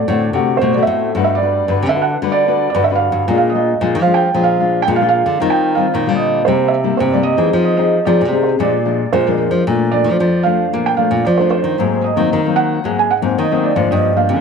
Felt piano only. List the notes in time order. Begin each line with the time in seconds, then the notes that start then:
Already playing: D5
0.57 C5
0.72 D5
0.83 E5
1.24 E5
1.35 D5
1.89 E5
2.02 F#5
2.32 D5
2.70 D5
2.84 E5
2.95 F5
3.38 F5
3.50 D#5
4.02 F5
4.14 G5
4.44 F5
4.82 G5
4.96 F5
5.09 F5
5.50 G5
5.75 F5
6.15 D#5
6.45 C5
6.68 E5
6.97 C5
7.12 D5
7.23 D#5
7.64 D#5
7.77 D#5
8.05 D5
8.43 C5
8.60 D5
9.12 C5
9.26 A#4
9.38 A#4
9.91 D5
10.43 F5
10.86 G5
10.97 F5
11.25 D5
11.37 C5
11.51 C5
12.04 D#5
12.56 F#5
12.99 G#5
13.11 F#5
13.39 D#5
13.52 D#5
13.63 D5
13.91 D#5
14.17 F5